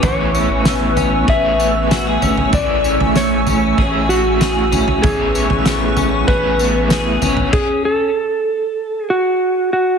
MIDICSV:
0, 0, Header, 1, 7, 480
1, 0, Start_track
1, 0, Tempo, 625000
1, 25, Time_signature, 4, 2, 24, 8
1, 7668, End_track
2, 0, Start_track
2, 0, Title_t, "Analog synth pad"
2, 0, Program_c, 0, 89
2, 0, Note_on_c, 0, 85, 65
2, 25, Note_on_c, 0, 71, 78
2, 26, Note_on_c, 0, 80, 68
2, 27, Note_on_c, 0, 88, 83
2, 1926, Note_off_c, 0, 71, 0
2, 1941, Note_on_c, 0, 57, 76
2, 3838, Note_off_c, 0, 85, 0
2, 3844, Note_off_c, 0, 57, 0
2, 3864, Note_on_c, 0, 71, 73
2, 3866, Note_on_c, 0, 85, 64
2, 5755, Note_off_c, 0, 80, 0
2, 5755, Note_off_c, 0, 88, 0
2, 5766, Note_off_c, 0, 71, 0
2, 5767, Note_off_c, 0, 85, 0
2, 7668, End_track
3, 0, Start_track
3, 0, Title_t, "Electric slide guitar"
3, 0, Program_c, 1, 29
3, 34, Note_on_c, 1, 73, 92
3, 992, Note_off_c, 1, 73, 0
3, 995, Note_on_c, 1, 76, 113
3, 1950, Note_off_c, 1, 76, 0
3, 1953, Note_on_c, 1, 74, 94
3, 2429, Note_off_c, 1, 74, 0
3, 2432, Note_on_c, 1, 73, 96
3, 3142, Note_on_c, 1, 66, 98
3, 3170, Note_off_c, 1, 73, 0
3, 3858, Note_on_c, 1, 68, 91
3, 3885, Note_off_c, 1, 66, 0
3, 4820, Note_on_c, 1, 71, 102
3, 4850, Note_off_c, 1, 68, 0
3, 5752, Note_off_c, 1, 71, 0
3, 5784, Note_on_c, 1, 68, 87
3, 6007, Note_off_c, 1, 68, 0
3, 6030, Note_on_c, 1, 69, 90
3, 6929, Note_off_c, 1, 69, 0
3, 6929, Note_on_c, 1, 68, 90
3, 6989, Note_on_c, 1, 66, 85
3, 7437, Note_off_c, 1, 68, 0
3, 7463, Note_off_c, 1, 66, 0
3, 7472, Note_on_c, 1, 66, 83
3, 7668, Note_off_c, 1, 66, 0
3, 7668, End_track
4, 0, Start_track
4, 0, Title_t, "Overdriven electric guitar"
4, 0, Program_c, 2, 29
4, 18, Note_on_c, 2, 57, 73
4, 28, Note_on_c, 2, 59, 76
4, 39, Note_on_c, 2, 64, 85
4, 48, Note_on_c, 2, 68, 86
4, 58, Note_on_c, 2, 73, 89
4, 975, Note_off_c, 2, 57, 0
4, 978, Note_on_c, 2, 57, 79
4, 979, Note_off_c, 2, 59, 0
4, 988, Note_on_c, 2, 59, 88
4, 997, Note_off_c, 2, 64, 0
4, 1000, Note_on_c, 2, 64, 81
4, 1001, Note_off_c, 2, 68, 0
4, 1006, Note_on_c, 2, 68, 80
4, 1011, Note_off_c, 2, 73, 0
4, 1015, Note_on_c, 2, 73, 76
4, 1931, Note_off_c, 2, 57, 0
4, 1934, Note_on_c, 2, 57, 80
4, 1947, Note_off_c, 2, 59, 0
4, 1957, Note_off_c, 2, 68, 0
4, 1962, Note_off_c, 2, 64, 0
4, 1966, Note_on_c, 2, 64, 79
4, 1973, Note_on_c, 2, 68, 87
4, 2891, Note_off_c, 2, 57, 0
4, 2900, Note_on_c, 2, 57, 80
4, 2916, Note_on_c, 2, 61, 82
4, 2923, Note_off_c, 2, 68, 0
4, 2924, Note_off_c, 2, 64, 0
4, 2927, Note_on_c, 2, 64, 77
4, 2940, Note_on_c, 2, 68, 85
4, 3703, Note_off_c, 2, 73, 0
4, 3847, Note_off_c, 2, 57, 0
4, 3856, Note_on_c, 2, 57, 85
4, 3864, Note_off_c, 2, 61, 0
4, 3867, Note_on_c, 2, 59, 80
4, 3876, Note_off_c, 2, 64, 0
4, 3879, Note_on_c, 2, 64, 80
4, 3888, Note_off_c, 2, 68, 0
4, 3891, Note_on_c, 2, 68, 100
4, 3896, Note_on_c, 2, 73, 96
4, 4822, Note_off_c, 2, 59, 0
4, 4823, Note_off_c, 2, 57, 0
4, 4824, Note_off_c, 2, 64, 0
4, 4826, Note_on_c, 2, 57, 79
4, 4828, Note_off_c, 2, 68, 0
4, 4831, Note_on_c, 2, 59, 74
4, 4833, Note_on_c, 2, 64, 80
4, 4838, Note_on_c, 2, 68, 80
4, 4845, Note_off_c, 2, 73, 0
4, 4848, Note_on_c, 2, 73, 83
4, 5532, Note_off_c, 2, 73, 0
4, 5535, Note_on_c, 2, 73, 56
4, 5539, Note_off_c, 2, 68, 0
4, 5548, Note_off_c, 2, 59, 0
4, 5549, Note_off_c, 2, 64, 0
4, 5549, Note_on_c, 2, 68, 52
4, 5561, Note_on_c, 2, 64, 52
4, 5572, Note_off_c, 2, 57, 0
4, 5780, Note_off_c, 2, 73, 0
4, 5787, Note_off_c, 2, 68, 0
4, 5793, Note_off_c, 2, 64, 0
4, 7668, End_track
5, 0, Start_track
5, 0, Title_t, "Clean electric guitar"
5, 0, Program_c, 3, 27
5, 0, Note_on_c, 3, 61, 61
5, 24, Note_on_c, 3, 52, 102
5, 263, Note_off_c, 3, 61, 0
5, 266, Note_on_c, 3, 61, 53
5, 507, Note_on_c, 3, 59, 49
5, 738, Note_off_c, 3, 61, 0
5, 741, Note_on_c, 3, 61, 66
5, 984, Note_on_c, 3, 68, 67
5, 1216, Note_off_c, 3, 59, 0
5, 1225, Note_on_c, 3, 59, 62
5, 1465, Note_off_c, 3, 68, 0
5, 1468, Note_on_c, 3, 66, 63
5, 1590, Note_off_c, 3, 66, 0
5, 1590, Note_on_c, 3, 68, 60
5, 1704, Note_off_c, 3, 61, 0
5, 1707, Note_on_c, 3, 61, 60
5, 1948, Note_off_c, 3, 52, 0
5, 1951, Note_on_c, 3, 52, 99
5, 1993, Note_off_c, 3, 59, 0
5, 1995, Note_off_c, 3, 68, 0
5, 2186, Note_off_c, 3, 61, 0
5, 2189, Note_on_c, 3, 61, 59
5, 2428, Note_on_c, 3, 57, 58
5, 2667, Note_off_c, 3, 61, 0
5, 2670, Note_on_c, 3, 61, 60
5, 2907, Note_on_c, 3, 68, 70
5, 3135, Note_off_c, 3, 57, 0
5, 3144, Note_on_c, 3, 57, 61
5, 3380, Note_off_c, 3, 68, 0
5, 3383, Note_on_c, 3, 68, 64
5, 3620, Note_off_c, 3, 61, 0
5, 3624, Note_on_c, 3, 61, 65
5, 3865, Note_off_c, 3, 52, 0
5, 3868, Note_on_c, 3, 52, 91
5, 3912, Note_off_c, 3, 57, 0
5, 4105, Note_off_c, 3, 61, 0
5, 4109, Note_on_c, 3, 61, 56
5, 4349, Note_on_c, 3, 59, 54
5, 4587, Note_off_c, 3, 61, 0
5, 4590, Note_on_c, 3, 61, 66
5, 4827, Note_off_c, 3, 68, 0
5, 4830, Note_on_c, 3, 68, 67
5, 5061, Note_off_c, 3, 59, 0
5, 5070, Note_on_c, 3, 59, 61
5, 5305, Note_off_c, 3, 68, 0
5, 5314, Note_on_c, 3, 68, 70
5, 5547, Note_off_c, 3, 61, 0
5, 5550, Note_on_c, 3, 61, 64
5, 5786, Note_off_c, 3, 52, 0
5, 5835, Note_off_c, 3, 59, 0
5, 5838, Note_off_c, 3, 68, 0
5, 6220, Note_off_c, 3, 61, 0
5, 7668, End_track
6, 0, Start_track
6, 0, Title_t, "Analog synth bass"
6, 0, Program_c, 4, 38
6, 21, Note_on_c, 4, 33, 101
6, 365, Note_off_c, 4, 33, 0
6, 379, Note_on_c, 4, 33, 112
6, 952, Note_off_c, 4, 33, 0
6, 979, Note_on_c, 4, 33, 88
6, 1671, Note_off_c, 4, 33, 0
6, 1698, Note_on_c, 4, 32, 91
6, 1930, Note_off_c, 4, 32, 0
6, 1942, Note_on_c, 4, 33, 98
6, 2285, Note_off_c, 4, 33, 0
6, 2301, Note_on_c, 4, 33, 100
6, 2873, Note_off_c, 4, 33, 0
6, 2900, Note_on_c, 4, 33, 108
6, 3832, Note_off_c, 4, 33, 0
6, 3863, Note_on_c, 4, 33, 119
6, 4206, Note_off_c, 4, 33, 0
6, 4218, Note_on_c, 4, 33, 103
6, 4791, Note_off_c, 4, 33, 0
6, 4819, Note_on_c, 4, 33, 101
6, 5511, Note_off_c, 4, 33, 0
6, 5541, Note_on_c, 4, 32, 85
6, 5771, Note_off_c, 4, 32, 0
6, 7668, End_track
7, 0, Start_track
7, 0, Title_t, "Drums"
7, 21, Note_on_c, 9, 43, 109
7, 21, Note_on_c, 9, 54, 68
7, 24, Note_on_c, 9, 36, 101
7, 98, Note_off_c, 9, 43, 0
7, 98, Note_off_c, 9, 54, 0
7, 101, Note_off_c, 9, 36, 0
7, 265, Note_on_c, 9, 54, 68
7, 342, Note_off_c, 9, 54, 0
7, 502, Note_on_c, 9, 38, 105
7, 502, Note_on_c, 9, 54, 88
7, 579, Note_off_c, 9, 38, 0
7, 579, Note_off_c, 9, 54, 0
7, 743, Note_on_c, 9, 43, 63
7, 743, Note_on_c, 9, 54, 65
7, 819, Note_off_c, 9, 43, 0
7, 819, Note_off_c, 9, 54, 0
7, 983, Note_on_c, 9, 36, 91
7, 1060, Note_off_c, 9, 36, 0
7, 1227, Note_on_c, 9, 54, 64
7, 1303, Note_off_c, 9, 54, 0
7, 1467, Note_on_c, 9, 54, 86
7, 1470, Note_on_c, 9, 38, 112
7, 1544, Note_off_c, 9, 54, 0
7, 1546, Note_off_c, 9, 38, 0
7, 1706, Note_on_c, 9, 43, 62
7, 1706, Note_on_c, 9, 54, 63
7, 1783, Note_off_c, 9, 43, 0
7, 1783, Note_off_c, 9, 54, 0
7, 1824, Note_on_c, 9, 43, 63
7, 1901, Note_off_c, 9, 43, 0
7, 1942, Note_on_c, 9, 43, 101
7, 1942, Note_on_c, 9, 54, 64
7, 1943, Note_on_c, 9, 36, 104
7, 2018, Note_off_c, 9, 43, 0
7, 2018, Note_off_c, 9, 54, 0
7, 2020, Note_off_c, 9, 36, 0
7, 2184, Note_on_c, 9, 54, 66
7, 2260, Note_off_c, 9, 54, 0
7, 2308, Note_on_c, 9, 43, 68
7, 2384, Note_off_c, 9, 43, 0
7, 2424, Note_on_c, 9, 38, 93
7, 2424, Note_on_c, 9, 54, 90
7, 2500, Note_off_c, 9, 54, 0
7, 2501, Note_off_c, 9, 38, 0
7, 2662, Note_on_c, 9, 43, 62
7, 2662, Note_on_c, 9, 54, 63
7, 2739, Note_off_c, 9, 43, 0
7, 2739, Note_off_c, 9, 54, 0
7, 2903, Note_on_c, 9, 36, 78
7, 2980, Note_off_c, 9, 36, 0
7, 3149, Note_on_c, 9, 54, 61
7, 3226, Note_off_c, 9, 54, 0
7, 3385, Note_on_c, 9, 54, 79
7, 3387, Note_on_c, 9, 38, 110
7, 3462, Note_off_c, 9, 54, 0
7, 3464, Note_off_c, 9, 38, 0
7, 3628, Note_on_c, 9, 43, 66
7, 3628, Note_on_c, 9, 54, 70
7, 3705, Note_off_c, 9, 43, 0
7, 3705, Note_off_c, 9, 54, 0
7, 3746, Note_on_c, 9, 43, 67
7, 3822, Note_off_c, 9, 43, 0
7, 3867, Note_on_c, 9, 36, 104
7, 3869, Note_on_c, 9, 43, 113
7, 3869, Note_on_c, 9, 54, 62
7, 3944, Note_off_c, 9, 36, 0
7, 3945, Note_off_c, 9, 43, 0
7, 3945, Note_off_c, 9, 54, 0
7, 4109, Note_on_c, 9, 54, 71
7, 4186, Note_off_c, 9, 54, 0
7, 4224, Note_on_c, 9, 43, 73
7, 4301, Note_off_c, 9, 43, 0
7, 4343, Note_on_c, 9, 54, 89
7, 4344, Note_on_c, 9, 38, 109
7, 4420, Note_off_c, 9, 38, 0
7, 4420, Note_off_c, 9, 54, 0
7, 4582, Note_on_c, 9, 43, 65
7, 4582, Note_on_c, 9, 54, 60
7, 4658, Note_off_c, 9, 43, 0
7, 4658, Note_off_c, 9, 54, 0
7, 4823, Note_on_c, 9, 36, 87
7, 4899, Note_off_c, 9, 36, 0
7, 5063, Note_on_c, 9, 54, 65
7, 5140, Note_off_c, 9, 54, 0
7, 5301, Note_on_c, 9, 54, 92
7, 5303, Note_on_c, 9, 38, 109
7, 5378, Note_off_c, 9, 54, 0
7, 5380, Note_off_c, 9, 38, 0
7, 5543, Note_on_c, 9, 43, 65
7, 5543, Note_on_c, 9, 54, 72
7, 5620, Note_off_c, 9, 43, 0
7, 5620, Note_off_c, 9, 54, 0
7, 5657, Note_on_c, 9, 43, 67
7, 5734, Note_off_c, 9, 43, 0
7, 5782, Note_on_c, 9, 49, 85
7, 5783, Note_on_c, 9, 36, 110
7, 5858, Note_off_c, 9, 49, 0
7, 5860, Note_off_c, 9, 36, 0
7, 7668, End_track
0, 0, End_of_file